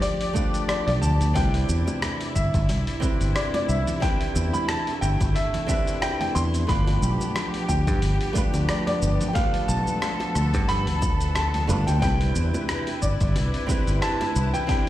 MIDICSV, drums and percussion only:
0, 0, Header, 1, 2, 480
1, 0, Start_track
1, 0, Key_signature, 0, "major"
1, 0, Tempo, 666667
1, 977, Time_signature, 4, 2, 24, 8
1, 10722, End_track
2, 0, Start_track
2, 0, Title_t, "Drums"
2, 16, Note_on_c, 9, 46, 70
2, 18, Note_on_c, 9, 69, 33
2, 88, Note_off_c, 9, 46, 0
2, 90, Note_off_c, 9, 69, 0
2, 149, Note_on_c, 9, 46, 49
2, 221, Note_off_c, 9, 46, 0
2, 258, Note_on_c, 9, 36, 104
2, 258, Note_on_c, 9, 69, 76
2, 330, Note_off_c, 9, 36, 0
2, 330, Note_off_c, 9, 69, 0
2, 389, Note_on_c, 9, 46, 30
2, 391, Note_on_c, 9, 69, 41
2, 461, Note_off_c, 9, 46, 0
2, 463, Note_off_c, 9, 69, 0
2, 496, Note_on_c, 9, 37, 101
2, 496, Note_on_c, 9, 46, 66
2, 498, Note_on_c, 9, 69, 33
2, 568, Note_off_c, 9, 37, 0
2, 568, Note_off_c, 9, 46, 0
2, 570, Note_off_c, 9, 69, 0
2, 631, Note_on_c, 9, 46, 48
2, 703, Note_off_c, 9, 46, 0
2, 739, Note_on_c, 9, 69, 70
2, 811, Note_off_c, 9, 69, 0
2, 870, Note_on_c, 9, 46, 31
2, 872, Note_on_c, 9, 69, 42
2, 942, Note_off_c, 9, 46, 0
2, 944, Note_off_c, 9, 69, 0
2, 971, Note_on_c, 9, 60, 55
2, 976, Note_on_c, 9, 46, 70
2, 978, Note_on_c, 9, 36, 118
2, 978, Note_on_c, 9, 69, 33
2, 1043, Note_off_c, 9, 60, 0
2, 1048, Note_off_c, 9, 46, 0
2, 1050, Note_off_c, 9, 36, 0
2, 1050, Note_off_c, 9, 69, 0
2, 1109, Note_on_c, 9, 46, 45
2, 1181, Note_off_c, 9, 46, 0
2, 1219, Note_on_c, 9, 69, 78
2, 1291, Note_off_c, 9, 69, 0
2, 1350, Note_on_c, 9, 60, 81
2, 1351, Note_on_c, 9, 63, 101
2, 1351, Note_on_c, 9, 69, 41
2, 1422, Note_off_c, 9, 60, 0
2, 1423, Note_off_c, 9, 63, 0
2, 1423, Note_off_c, 9, 69, 0
2, 1457, Note_on_c, 9, 37, 108
2, 1457, Note_on_c, 9, 46, 75
2, 1459, Note_on_c, 9, 69, 33
2, 1529, Note_off_c, 9, 37, 0
2, 1529, Note_off_c, 9, 46, 0
2, 1531, Note_off_c, 9, 69, 0
2, 1589, Note_on_c, 9, 46, 45
2, 1591, Note_on_c, 9, 60, 55
2, 1661, Note_off_c, 9, 46, 0
2, 1663, Note_off_c, 9, 60, 0
2, 1698, Note_on_c, 9, 36, 61
2, 1699, Note_on_c, 9, 69, 79
2, 1770, Note_off_c, 9, 36, 0
2, 1771, Note_off_c, 9, 69, 0
2, 1830, Note_on_c, 9, 46, 34
2, 1831, Note_on_c, 9, 36, 99
2, 1832, Note_on_c, 9, 69, 44
2, 1902, Note_off_c, 9, 46, 0
2, 1903, Note_off_c, 9, 36, 0
2, 1904, Note_off_c, 9, 69, 0
2, 1936, Note_on_c, 9, 46, 67
2, 1938, Note_on_c, 9, 69, 31
2, 1939, Note_on_c, 9, 60, 78
2, 2008, Note_off_c, 9, 46, 0
2, 2010, Note_off_c, 9, 69, 0
2, 2011, Note_off_c, 9, 60, 0
2, 2068, Note_on_c, 9, 46, 49
2, 2140, Note_off_c, 9, 46, 0
2, 2178, Note_on_c, 9, 36, 110
2, 2179, Note_on_c, 9, 69, 79
2, 2180, Note_on_c, 9, 60, 52
2, 2250, Note_off_c, 9, 36, 0
2, 2251, Note_off_c, 9, 69, 0
2, 2252, Note_off_c, 9, 60, 0
2, 2310, Note_on_c, 9, 46, 32
2, 2312, Note_on_c, 9, 69, 42
2, 2382, Note_off_c, 9, 46, 0
2, 2384, Note_off_c, 9, 69, 0
2, 2417, Note_on_c, 9, 37, 107
2, 2417, Note_on_c, 9, 46, 71
2, 2419, Note_on_c, 9, 69, 33
2, 2489, Note_off_c, 9, 37, 0
2, 2489, Note_off_c, 9, 46, 0
2, 2491, Note_off_c, 9, 69, 0
2, 2549, Note_on_c, 9, 46, 47
2, 2551, Note_on_c, 9, 63, 92
2, 2552, Note_on_c, 9, 60, 84
2, 2621, Note_off_c, 9, 46, 0
2, 2623, Note_off_c, 9, 63, 0
2, 2624, Note_off_c, 9, 60, 0
2, 2658, Note_on_c, 9, 69, 78
2, 2730, Note_off_c, 9, 69, 0
2, 2789, Note_on_c, 9, 46, 32
2, 2791, Note_on_c, 9, 69, 44
2, 2794, Note_on_c, 9, 60, 60
2, 2795, Note_on_c, 9, 64, 109
2, 2861, Note_off_c, 9, 46, 0
2, 2863, Note_off_c, 9, 69, 0
2, 2866, Note_off_c, 9, 60, 0
2, 2867, Note_off_c, 9, 64, 0
2, 2897, Note_on_c, 9, 46, 73
2, 2898, Note_on_c, 9, 36, 125
2, 2899, Note_on_c, 9, 69, 35
2, 2969, Note_off_c, 9, 46, 0
2, 2970, Note_off_c, 9, 36, 0
2, 2971, Note_off_c, 9, 69, 0
2, 3029, Note_on_c, 9, 46, 47
2, 3101, Note_off_c, 9, 46, 0
2, 3137, Note_on_c, 9, 60, 78
2, 3138, Note_on_c, 9, 69, 83
2, 3209, Note_off_c, 9, 60, 0
2, 3210, Note_off_c, 9, 69, 0
2, 3269, Note_on_c, 9, 64, 82
2, 3270, Note_on_c, 9, 69, 44
2, 3272, Note_on_c, 9, 63, 95
2, 3341, Note_off_c, 9, 64, 0
2, 3342, Note_off_c, 9, 69, 0
2, 3344, Note_off_c, 9, 63, 0
2, 3374, Note_on_c, 9, 37, 114
2, 3374, Note_on_c, 9, 46, 72
2, 3376, Note_on_c, 9, 69, 35
2, 3379, Note_on_c, 9, 60, 51
2, 3446, Note_off_c, 9, 37, 0
2, 3446, Note_off_c, 9, 46, 0
2, 3448, Note_off_c, 9, 69, 0
2, 3451, Note_off_c, 9, 60, 0
2, 3508, Note_on_c, 9, 46, 44
2, 3580, Note_off_c, 9, 46, 0
2, 3616, Note_on_c, 9, 37, 33
2, 3619, Note_on_c, 9, 69, 79
2, 3688, Note_off_c, 9, 37, 0
2, 3691, Note_off_c, 9, 69, 0
2, 3748, Note_on_c, 9, 46, 33
2, 3750, Note_on_c, 9, 36, 111
2, 3750, Note_on_c, 9, 69, 50
2, 3752, Note_on_c, 9, 60, 78
2, 3820, Note_off_c, 9, 46, 0
2, 3822, Note_off_c, 9, 36, 0
2, 3822, Note_off_c, 9, 69, 0
2, 3824, Note_off_c, 9, 60, 0
2, 3856, Note_on_c, 9, 46, 61
2, 3858, Note_on_c, 9, 69, 31
2, 3928, Note_off_c, 9, 46, 0
2, 3930, Note_off_c, 9, 69, 0
2, 3989, Note_on_c, 9, 46, 45
2, 3991, Note_on_c, 9, 64, 94
2, 3992, Note_on_c, 9, 60, 50
2, 4061, Note_off_c, 9, 46, 0
2, 4063, Note_off_c, 9, 64, 0
2, 4064, Note_off_c, 9, 60, 0
2, 4097, Note_on_c, 9, 69, 88
2, 4098, Note_on_c, 9, 36, 116
2, 4169, Note_off_c, 9, 69, 0
2, 4170, Note_off_c, 9, 36, 0
2, 4229, Note_on_c, 9, 46, 30
2, 4231, Note_on_c, 9, 69, 42
2, 4301, Note_off_c, 9, 46, 0
2, 4303, Note_off_c, 9, 69, 0
2, 4335, Note_on_c, 9, 37, 109
2, 4335, Note_on_c, 9, 46, 73
2, 4335, Note_on_c, 9, 60, 78
2, 4337, Note_on_c, 9, 69, 36
2, 4407, Note_off_c, 9, 37, 0
2, 4407, Note_off_c, 9, 46, 0
2, 4407, Note_off_c, 9, 60, 0
2, 4409, Note_off_c, 9, 69, 0
2, 4469, Note_on_c, 9, 46, 44
2, 4469, Note_on_c, 9, 63, 93
2, 4473, Note_on_c, 9, 64, 79
2, 4541, Note_off_c, 9, 46, 0
2, 4541, Note_off_c, 9, 63, 0
2, 4545, Note_off_c, 9, 64, 0
2, 4577, Note_on_c, 9, 60, 59
2, 4579, Note_on_c, 9, 69, 83
2, 4649, Note_off_c, 9, 60, 0
2, 4651, Note_off_c, 9, 69, 0
2, 4709, Note_on_c, 9, 46, 30
2, 4711, Note_on_c, 9, 69, 48
2, 4781, Note_off_c, 9, 46, 0
2, 4783, Note_off_c, 9, 69, 0
2, 4817, Note_on_c, 9, 36, 127
2, 4817, Note_on_c, 9, 46, 68
2, 4819, Note_on_c, 9, 69, 36
2, 4889, Note_off_c, 9, 36, 0
2, 4889, Note_off_c, 9, 46, 0
2, 4891, Note_off_c, 9, 69, 0
2, 4949, Note_on_c, 9, 60, 76
2, 4950, Note_on_c, 9, 46, 42
2, 5021, Note_off_c, 9, 60, 0
2, 5022, Note_off_c, 9, 46, 0
2, 5059, Note_on_c, 9, 69, 85
2, 5131, Note_off_c, 9, 69, 0
2, 5188, Note_on_c, 9, 63, 82
2, 5191, Note_on_c, 9, 60, 45
2, 5191, Note_on_c, 9, 69, 45
2, 5260, Note_off_c, 9, 63, 0
2, 5263, Note_off_c, 9, 60, 0
2, 5263, Note_off_c, 9, 69, 0
2, 5297, Note_on_c, 9, 37, 104
2, 5297, Note_on_c, 9, 46, 68
2, 5299, Note_on_c, 9, 69, 37
2, 5369, Note_off_c, 9, 37, 0
2, 5369, Note_off_c, 9, 46, 0
2, 5371, Note_off_c, 9, 69, 0
2, 5428, Note_on_c, 9, 46, 43
2, 5500, Note_off_c, 9, 46, 0
2, 5537, Note_on_c, 9, 36, 66
2, 5538, Note_on_c, 9, 69, 84
2, 5540, Note_on_c, 9, 60, 74
2, 5609, Note_off_c, 9, 36, 0
2, 5610, Note_off_c, 9, 69, 0
2, 5612, Note_off_c, 9, 60, 0
2, 5669, Note_on_c, 9, 36, 112
2, 5669, Note_on_c, 9, 46, 30
2, 5671, Note_on_c, 9, 69, 48
2, 5741, Note_off_c, 9, 36, 0
2, 5741, Note_off_c, 9, 46, 0
2, 5743, Note_off_c, 9, 69, 0
2, 5776, Note_on_c, 9, 46, 63
2, 5778, Note_on_c, 9, 69, 32
2, 5782, Note_on_c, 9, 60, 51
2, 5848, Note_off_c, 9, 46, 0
2, 5850, Note_off_c, 9, 69, 0
2, 5854, Note_off_c, 9, 60, 0
2, 5909, Note_on_c, 9, 46, 45
2, 5981, Note_off_c, 9, 46, 0
2, 6016, Note_on_c, 9, 69, 86
2, 6017, Note_on_c, 9, 36, 118
2, 6088, Note_off_c, 9, 69, 0
2, 6089, Note_off_c, 9, 36, 0
2, 6147, Note_on_c, 9, 60, 84
2, 6148, Note_on_c, 9, 46, 31
2, 6149, Note_on_c, 9, 69, 44
2, 6219, Note_off_c, 9, 60, 0
2, 6220, Note_off_c, 9, 46, 0
2, 6221, Note_off_c, 9, 69, 0
2, 6255, Note_on_c, 9, 37, 104
2, 6255, Note_on_c, 9, 46, 67
2, 6257, Note_on_c, 9, 69, 37
2, 6327, Note_off_c, 9, 37, 0
2, 6327, Note_off_c, 9, 46, 0
2, 6329, Note_off_c, 9, 69, 0
2, 6388, Note_on_c, 9, 46, 45
2, 6389, Note_on_c, 9, 60, 51
2, 6391, Note_on_c, 9, 63, 91
2, 6460, Note_off_c, 9, 46, 0
2, 6461, Note_off_c, 9, 60, 0
2, 6463, Note_off_c, 9, 63, 0
2, 6496, Note_on_c, 9, 69, 79
2, 6568, Note_off_c, 9, 69, 0
2, 6629, Note_on_c, 9, 46, 30
2, 6631, Note_on_c, 9, 69, 47
2, 6632, Note_on_c, 9, 64, 92
2, 6701, Note_off_c, 9, 46, 0
2, 6703, Note_off_c, 9, 69, 0
2, 6704, Note_off_c, 9, 64, 0
2, 6734, Note_on_c, 9, 46, 64
2, 6736, Note_on_c, 9, 69, 34
2, 6737, Note_on_c, 9, 36, 124
2, 6741, Note_on_c, 9, 60, 82
2, 6806, Note_off_c, 9, 46, 0
2, 6808, Note_off_c, 9, 69, 0
2, 6809, Note_off_c, 9, 36, 0
2, 6813, Note_off_c, 9, 60, 0
2, 6868, Note_on_c, 9, 46, 43
2, 6940, Note_off_c, 9, 46, 0
2, 6969, Note_on_c, 9, 60, 45
2, 6977, Note_on_c, 9, 69, 85
2, 7041, Note_off_c, 9, 60, 0
2, 7049, Note_off_c, 9, 69, 0
2, 7108, Note_on_c, 9, 69, 47
2, 7112, Note_on_c, 9, 63, 92
2, 7112, Note_on_c, 9, 64, 81
2, 7180, Note_off_c, 9, 69, 0
2, 7184, Note_off_c, 9, 63, 0
2, 7184, Note_off_c, 9, 64, 0
2, 7215, Note_on_c, 9, 37, 103
2, 7215, Note_on_c, 9, 46, 61
2, 7217, Note_on_c, 9, 69, 35
2, 7287, Note_off_c, 9, 37, 0
2, 7287, Note_off_c, 9, 46, 0
2, 7289, Note_off_c, 9, 69, 0
2, 7343, Note_on_c, 9, 60, 77
2, 7347, Note_on_c, 9, 46, 43
2, 7415, Note_off_c, 9, 60, 0
2, 7419, Note_off_c, 9, 46, 0
2, 7455, Note_on_c, 9, 37, 31
2, 7457, Note_on_c, 9, 69, 83
2, 7527, Note_off_c, 9, 37, 0
2, 7529, Note_off_c, 9, 69, 0
2, 7586, Note_on_c, 9, 46, 30
2, 7588, Note_on_c, 9, 69, 51
2, 7589, Note_on_c, 9, 60, 48
2, 7590, Note_on_c, 9, 36, 108
2, 7658, Note_off_c, 9, 46, 0
2, 7660, Note_off_c, 9, 69, 0
2, 7661, Note_off_c, 9, 60, 0
2, 7662, Note_off_c, 9, 36, 0
2, 7695, Note_on_c, 9, 46, 62
2, 7697, Note_on_c, 9, 69, 32
2, 7767, Note_off_c, 9, 46, 0
2, 7769, Note_off_c, 9, 69, 0
2, 7828, Note_on_c, 9, 46, 47
2, 7831, Note_on_c, 9, 64, 81
2, 7900, Note_off_c, 9, 46, 0
2, 7903, Note_off_c, 9, 64, 0
2, 7934, Note_on_c, 9, 60, 78
2, 7937, Note_on_c, 9, 36, 108
2, 7937, Note_on_c, 9, 69, 83
2, 8006, Note_off_c, 9, 60, 0
2, 8009, Note_off_c, 9, 36, 0
2, 8009, Note_off_c, 9, 69, 0
2, 8068, Note_on_c, 9, 46, 29
2, 8070, Note_on_c, 9, 69, 48
2, 8140, Note_off_c, 9, 46, 0
2, 8142, Note_off_c, 9, 69, 0
2, 8175, Note_on_c, 9, 60, 44
2, 8176, Note_on_c, 9, 37, 99
2, 8176, Note_on_c, 9, 46, 69
2, 8178, Note_on_c, 9, 69, 33
2, 8247, Note_off_c, 9, 60, 0
2, 8248, Note_off_c, 9, 37, 0
2, 8248, Note_off_c, 9, 46, 0
2, 8250, Note_off_c, 9, 69, 0
2, 8310, Note_on_c, 9, 46, 45
2, 8310, Note_on_c, 9, 64, 67
2, 8312, Note_on_c, 9, 63, 84
2, 8382, Note_off_c, 9, 46, 0
2, 8382, Note_off_c, 9, 64, 0
2, 8384, Note_off_c, 9, 63, 0
2, 8419, Note_on_c, 9, 69, 83
2, 8491, Note_off_c, 9, 69, 0
2, 8550, Note_on_c, 9, 46, 29
2, 8552, Note_on_c, 9, 60, 77
2, 8552, Note_on_c, 9, 69, 45
2, 8622, Note_off_c, 9, 46, 0
2, 8624, Note_off_c, 9, 60, 0
2, 8624, Note_off_c, 9, 69, 0
2, 8656, Note_on_c, 9, 46, 67
2, 8658, Note_on_c, 9, 36, 125
2, 8658, Note_on_c, 9, 69, 34
2, 8662, Note_on_c, 9, 60, 47
2, 8728, Note_off_c, 9, 46, 0
2, 8730, Note_off_c, 9, 36, 0
2, 8730, Note_off_c, 9, 69, 0
2, 8734, Note_off_c, 9, 60, 0
2, 8789, Note_on_c, 9, 46, 41
2, 8861, Note_off_c, 9, 46, 0
2, 8896, Note_on_c, 9, 69, 75
2, 8968, Note_off_c, 9, 69, 0
2, 9031, Note_on_c, 9, 60, 79
2, 9031, Note_on_c, 9, 63, 100
2, 9031, Note_on_c, 9, 69, 44
2, 9103, Note_off_c, 9, 60, 0
2, 9103, Note_off_c, 9, 63, 0
2, 9103, Note_off_c, 9, 69, 0
2, 9136, Note_on_c, 9, 37, 98
2, 9136, Note_on_c, 9, 46, 68
2, 9138, Note_on_c, 9, 69, 32
2, 9208, Note_off_c, 9, 37, 0
2, 9208, Note_off_c, 9, 46, 0
2, 9210, Note_off_c, 9, 69, 0
2, 9266, Note_on_c, 9, 46, 42
2, 9268, Note_on_c, 9, 60, 47
2, 9338, Note_off_c, 9, 46, 0
2, 9340, Note_off_c, 9, 60, 0
2, 9377, Note_on_c, 9, 69, 83
2, 9378, Note_on_c, 9, 36, 62
2, 9449, Note_off_c, 9, 69, 0
2, 9450, Note_off_c, 9, 36, 0
2, 9508, Note_on_c, 9, 46, 29
2, 9510, Note_on_c, 9, 69, 45
2, 9511, Note_on_c, 9, 36, 100
2, 9580, Note_off_c, 9, 46, 0
2, 9582, Note_off_c, 9, 69, 0
2, 9583, Note_off_c, 9, 36, 0
2, 9617, Note_on_c, 9, 46, 61
2, 9618, Note_on_c, 9, 60, 80
2, 9619, Note_on_c, 9, 69, 31
2, 9689, Note_off_c, 9, 46, 0
2, 9690, Note_off_c, 9, 60, 0
2, 9691, Note_off_c, 9, 69, 0
2, 9749, Note_on_c, 9, 46, 43
2, 9821, Note_off_c, 9, 46, 0
2, 9857, Note_on_c, 9, 60, 52
2, 9858, Note_on_c, 9, 36, 115
2, 9859, Note_on_c, 9, 69, 85
2, 9929, Note_off_c, 9, 60, 0
2, 9930, Note_off_c, 9, 36, 0
2, 9931, Note_off_c, 9, 69, 0
2, 9989, Note_on_c, 9, 46, 29
2, 9991, Note_on_c, 9, 69, 46
2, 10061, Note_off_c, 9, 46, 0
2, 10063, Note_off_c, 9, 69, 0
2, 10096, Note_on_c, 9, 37, 94
2, 10096, Note_on_c, 9, 46, 66
2, 10098, Note_on_c, 9, 69, 32
2, 10168, Note_off_c, 9, 37, 0
2, 10168, Note_off_c, 9, 46, 0
2, 10170, Note_off_c, 9, 69, 0
2, 10229, Note_on_c, 9, 46, 40
2, 10230, Note_on_c, 9, 60, 85
2, 10234, Note_on_c, 9, 63, 83
2, 10301, Note_off_c, 9, 46, 0
2, 10302, Note_off_c, 9, 60, 0
2, 10306, Note_off_c, 9, 63, 0
2, 10339, Note_on_c, 9, 69, 81
2, 10411, Note_off_c, 9, 69, 0
2, 10470, Note_on_c, 9, 46, 28
2, 10472, Note_on_c, 9, 60, 54
2, 10472, Note_on_c, 9, 69, 43
2, 10473, Note_on_c, 9, 64, 86
2, 10542, Note_off_c, 9, 46, 0
2, 10544, Note_off_c, 9, 60, 0
2, 10544, Note_off_c, 9, 69, 0
2, 10545, Note_off_c, 9, 64, 0
2, 10576, Note_on_c, 9, 46, 64
2, 10578, Note_on_c, 9, 36, 115
2, 10578, Note_on_c, 9, 69, 33
2, 10648, Note_off_c, 9, 46, 0
2, 10650, Note_off_c, 9, 36, 0
2, 10650, Note_off_c, 9, 69, 0
2, 10722, End_track
0, 0, End_of_file